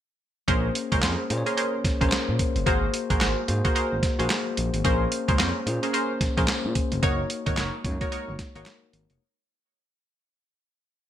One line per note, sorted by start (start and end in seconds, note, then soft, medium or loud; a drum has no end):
0.48 0.70 A#1 loud
0.48 1.26 A#3 medium
0.48 0.67 C#4 loud
0.48 1.26 C#4 medium
0.48 0.67 G#4 medium
0.48 1.26 G#4 medium
0.48 0.67 A#4 medium
0.48 0.67 C5 loud
0.48 1.26 C5 medium
0.48 kick loud
0.48 closed hi-hat medium
0.75 closed hi-hat medium
0.92 1.01 C#2 medium
0.92 1.01 C#4 medium
0.92 1.01 G#4 medium
0.92 1.01 A#4 medium
0.92 1.02 C5 medium
0.92 kick medium
0.92 closed hi-hat medium
1.02 1.16 F2 medium
1.02 1.21 C#4 medium
1.02 1.21 G#4 medium
1.02 1.22 A#4 medium
1.02 1.22 C5 medium
1.02 snare loud
1.02 clap medium
1.02 closed hi-hat medium
1.30 1.43 A#2 loud
1.30 1.96 A#3 medium
1.30 1.96 C#4 medium
1.30 1.96 G#4 medium
1.30 1.38 C5 medium
1.30 closed hi-hat medium
1.38 2.00 C#5 medium
1.46 1.56 C#4 medium
1.46 1.56 G#4 medium
1.46 1.56 A#4 medium
1.46 1.56 C5 medium
1.46 closed hi-hat soft
1.57 1.76 C#4 medium
1.57 1.76 G#4 medium
1.57 1.76 A#4 medium
1.57 1.76 C5 medium
1.57 closed hi-hat medium
1.85 1.91 A#1 soft
1.85 kick medium
1.85 snare medium
1.85 closed hi-hat medium
2.01 2.10 A#1 medium
2.01 2.63 A#3 medium
2.01 2.15 C#4 medium
2.01 2.63 C#4 medium
2.01 2.16 G#4 medium
2.01 2.64 G#4 medium
2.01 2.16 A#4 medium
2.01 2.07 A#4 medium
2.01 2.16 C5 medium
2.01 kick medium
2.01 closed hi-hat soft
2.09 2.66 C5 medium
2.09 snare loud
2.09 clap medium
2.09 closed hi-hat medium
2.29 2.37 A#2 loud
2.39 kick medium
2.39 closed hi-hat medium
2.55 2.64 F#1 loud
2.55 closed hi-hat soft
2.66 2.89 G#1 loud
2.66 3.44 A#3 medium
2.66 2.85 F#4 medium
2.66 3.44 F#4 medium
2.66 2.85 G#4 medium
2.66 3.45 G#4 medium
2.66 2.85 A#4 medium
2.66 2.85 C5 loud
2.66 3.45 C5 medium
2.66 kick loud
2.66 closed hi-hat medium
2.94 closed hi-hat medium
3.10 3.19 A#1 medium
3.10 3.19 F#4 medium
3.10 3.20 G#4 medium
3.10 3.20 A#4 medium
3.10 3.20 C5 medium
3.10 kick medium
3.10 closed hi-hat medium
3.21 3.34 G#1 medium
3.21 3.40 F#4 medium
3.21 3.40 G#4 medium
3.21 3.40 A#4 medium
3.21 3.40 C5 medium
3.21 snare loud
3.21 clap medium
3.21 closed hi-hat medium
3.48 3.62 G#2 medium
3.48 4.14 A#3 medium
3.48 4.14 F#4 medium
3.48 4.15 G#4 medium
3.48 4.15 C5 medium
3.48 closed hi-hat medium
3.64 3.74 F#4 medium
3.64 3.74 G#4 medium
3.64 3.74 A#4 medium
3.64 3.75 C5 medium
3.64 kick medium
3.64 closed hi-hat soft
3.75 3.94 F#4 medium
3.75 3.94 G#4 medium
3.75 3.94 A#4 medium
3.75 3.94 C5 medium
3.75 closed hi-hat medium
3.92 4.01 G#1 medium
4.03 kick medium
4.03 snare medium
4.03 closed hi-hat medium
4.19 4.28 A#1 medium
4.19 4.81 A#3 medium
4.19 4.34 F#4 medium
4.19 4.81 F#4 medium
4.19 4.34 G#4 medium
4.19 4.82 G#4 medium
4.19 4.34 A#4 medium
4.19 4.34 C5 medium
4.19 4.82 C5 medium
4.19 closed hi-hat medium
4.30 snare loud
4.30 clap medium
4.30 closed hi-hat medium
4.57 4.71 A#1 medium
4.57 closed hi-hat medium
4.74 4.82 G#1 loud
4.74 closed hi-hat soft
4.84 5.07 A#1 loud
4.84 5.62 A#3 medium
4.84 5.03 C#4 loud
4.84 5.63 C#4 medium
4.84 5.03 G#4 medium
4.84 5.63 G#4 medium
4.84 5.04 A#4 medium
4.84 5.04 C5 loud
4.84 5.63 C5 medium
4.84 kick loud
4.84 closed hi-hat medium
5.12 closed hi-hat medium
5.28 5.37 C#2 medium
5.28 5.38 C#4 medium
5.28 5.38 G#4 medium
5.28 5.38 A#4 medium
5.28 5.38 C5 medium
5.28 kick medium
5.28 closed hi-hat medium
5.39 5.52 F2 loud
5.39 5.58 C#4 medium
5.39 5.58 G#4 medium
5.39 5.58 A#4 medium
5.39 5.58 C5 medium
5.39 snare loud
5.39 clap medium
5.39 closed hi-hat medium
5.66 5.80 A#2 medium
5.66 6.32 A#3 medium
5.66 6.33 C#4 medium
5.66 6.33 G#4 medium
5.66 6.33 C5 medium
5.66 closed hi-hat medium
5.83 5.92 C#4 medium
5.83 5.92 G#4 medium
5.83 5.92 A#4 medium
5.83 5.93 C5 medium
5.83 closed hi-hat soft
5.93 6.12 C#4 medium
5.93 6.12 G#4 medium
5.93 6.13 A#4 medium
5.93 6.13 C5 medium
5.93 closed hi-hat medium
6.21 6.27 A#1 medium
6.21 kick medium
6.21 snare medium
6.21 closed hi-hat medium
6.37 6.46 A#1 medium
6.37 6.99 A#3 medium
6.37 6.52 C#4 medium
6.37 7.00 C#4 medium
6.37 6.52 G#4 medium
6.37 7.00 G#4 medium
6.37 6.52 A#4 medium
6.37 6.52 C5 medium
6.37 7.00 C5 medium
6.37 kick medium
6.37 closed hi-hat medium
6.48 snare loud
6.48 clap loud
6.48 closed hi-hat medium
6.65 6.73 A#2 loud
6.75 kick medium
6.75 closed hi-hat medium
6.92 7.01 F1 loud
6.92 closed hi-hat soft
7.03 7.25 F#1 loud
7.03 7.81 A#3 medium
7.03 7.22 D#4 loud
7.03 7.81 D#4 medium
7.03 7.22 F#4 medium
7.03 7.81 F#4 medium
7.03 7.22 A#4 medium
7.03 7.22 C#5 loud
7.03 7.81 C#5 medium
7.03 kick loud
7.03 closed hi-hat medium
7.30 closed hi-hat medium
7.46 7.55 G#1 medium
7.46 7.56 D#4 medium
7.46 7.56 F#4 medium
7.46 7.56 A#4 medium
7.46 7.56 C#5 medium
7.46 kick medium
7.46 closed hi-hat medium
7.57 7.71 F#1 medium
7.57 7.76 D#4 medium
7.57 7.76 F#4 medium
7.57 7.76 A#4 medium
7.57 7.76 C#5 medium
7.57 snare loud
7.57 clap medium
7.57 closed hi-hat medium
7.84 7.98 F#2 loud
7.84 7.92 G#3 medium
7.84 8.51 D#4 medium
7.84 8.51 F#4 medium
7.84 8.51 C#5 medium
7.84 kick loud
7.84 closed hi-hat medium
7.91 8.54 A#3 medium
8.01 8.10 D#4 medium
8.01 8.11 F#4 medium
8.01 8.11 A#4 medium
8.01 8.11 C#5 medium
8.01 kick loud
8.01 closed hi-hat soft
8.12 8.31 D#4 medium
8.12 8.31 F#4 medium
8.12 8.31 A#4 medium
8.12 8.31 C#5 medium
8.12 closed hi-hat medium
8.28 8.37 F#1 medium
8.39 kick medium
8.39 snare medium
8.39 closed hi-hat medium
8.55 8.64 G#1 medium
8.55 9.18 A#3 medium
8.55 8.70 D#4 medium
8.55 9.18 D#4 medium
8.55 8.70 F#4 medium
8.55 9.18 F#4 medium
8.55 8.70 A#4 medium
8.55 9.18 A#4 medium
8.55 8.70 C#5 medium
8.55 closed hi-hat soft
8.66 snare loud
8.66 clap medium
8.66 closed hi-hat medium
8.93 9.07 G#1 medium
8.93 closed hi-hat medium
9.10 9.19 F1 loud
9.10 closed hi-hat soft